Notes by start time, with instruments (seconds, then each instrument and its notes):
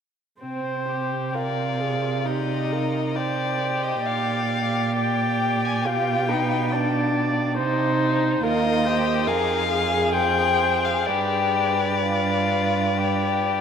0.41 cello C3, violin C4, viola C5
0.88 violin G4
1.34 violin F4 D5, viola A#4
1.81 viola G#4
2.26 violin D#4 D#5, viola G4
2.72 viola A#4
3.15 violin G4 D5, viola C5
3.83 violin D#5
4.05 cello A#2, viola D5, violin F5
4.97 violin G4 G5
5.64 violin G#5
5.85 cello B2, violin F4 G5, viola G4
6.28 violin D#4, viola B4
6.72 violin D4, viola D5
7.58 cello C3, violin D#4, viola C5
8.43 cello D#2, violin F4 D#5, viola A#4
8.85 violin G4, viola C5
9.27 cello F2, violin G#4 F5, viola A#4
9.70 viola G#4, violin G#4
10.14 viola C5, violin G5
10.84 violin F5
11.07 cello G2, violin G4 D5, viola B4
12.03 violin F4
12.98 violin G4